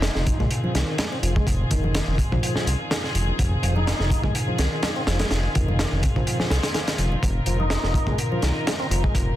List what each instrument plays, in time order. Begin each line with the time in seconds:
Already playing: string section D#3 C4 F4 G#4, tonewheel organ D#4
0.02 snare, closed hi-hat
0.15 analog synth bass F1, snare
0.26 kick, closed hi-hat, high conga
0.40 analog synth bass A#1, tonewheel organ G#3, kick, low conga
0.51 closed hi-hat
0.64 tonewheel organ F3, high conga
0.75 analog synth bass C2, tonewheel organ D#3, snare, closed hi-hat
0.98 tonewheel organ G#3, snare, closed hi-hat, high conga
1.12 tonewheel organ C4, high bongo
1.23 analog synth bass F1, tonewheel organ F3, closed hi-hat
1.36 tonewheel organ G#3, kick, high conga
1.47 analog synth bass F1, kick, closed hi-hat
1.71 analog synth bass F1, tonewheel organ D#3, kick, closed hi-hat
1.84 high bongo, high conga
1.95 snare, closed hi-hat
2.07 analog synth bass F1
2.18 kick, closed hi-hat
2.32 analog synth bass A#1, tonewheel organ F3, kick, low conga
2.43 closed hi-hat
2.56 tonewheel organ F3, snare, high conga
2.66 analog synth bass C2, closed hi-hat, high bongo
2.91 tonewheel organ D#3, snare, closed hi-hat, high conga
3.04 snare
3.15 analog synth bass F1, closed hi-hat
3.28 high conga
3.39 analog synth bass F1, kick, closed hi-hat
3.63 analog synth bass F1, tonewheel organ F3, closed hi-hat
3.76 tonewheel organ D#4, high bongo, high conga
3.87 snare, closed hi-hat
4.00 analog synth bass F1, snare
4.10 kick, closed hi-hat, high conga
4.23 analog synth bass A#1, tonewheel organ G#3, kick, low conga
4.35 closed hi-hat
4.48 tonewheel organ F3, high conga
4.58 analog synth bass C2, tonewheel organ D#3, snare, closed hi-hat
4.83 tonewheel organ G#3, snare, closed hi-hat, high conga
4.96 tonewheel organ C4, high bongo
5.07 analog synth bass F1, tonewheel organ F3, snare, closed hi-hat
5.19 tonewheel organ G#3, snare, closed hi-hat, high conga
5.31 analog synth bass F1, snare, closed hi-hat
5.55 analog synth bass F1, tonewheel organ D#3, kick, closed hi-hat
5.68 high bongo, high conga
5.79 snare, closed hi-hat
5.92 analog synth bass F1
6.03 kick, closed hi-hat
6.16 analog synth bass A#1, tonewheel organ F3, kick, low conga
6.27 closed hi-hat
6.40 tonewheel organ F3, snare, high conga
6.50 analog synth bass C2, snare, closed hi-hat, high bongo
6.63 snare, closed hi-hat
6.74 tonewheel organ D#3, snare, closed hi-hat, high conga
6.88 snare, closed hi-hat
6.98 analog synth bass F1, closed hi-hat, high bongo
7.12 high conga
7.23 analog synth bass F1, string section A#4, kick, closed hi-hat
7.46 analog synth bass F1, tonewheel organ F3, closed hi-hat
7.60 tonewheel organ D#4, high bongo, high conga
7.70 snare, closed hi-hat
7.83 analog synth bass F1, snare
7.94 kick, closed hi-hat, high conga
8.07 analog synth bass A#1, tonewheel organ G#3, kick, low conga
8.18 closed hi-hat
8.32 tonewheel organ F3, high conga
8.42 analog synth bass C2, tonewheel organ D#3, snare, closed hi-hat
8.67 tonewheel organ G#3, snare, closed hi-hat, high conga
8.79 tonewheel organ C4, high bongo
8.90 analog synth bass F1, tonewheel organ F3, closed hi-hat
9.04 tonewheel organ G#3, kick, high conga
9.15 analog synth bass F1, kick, closed hi-hat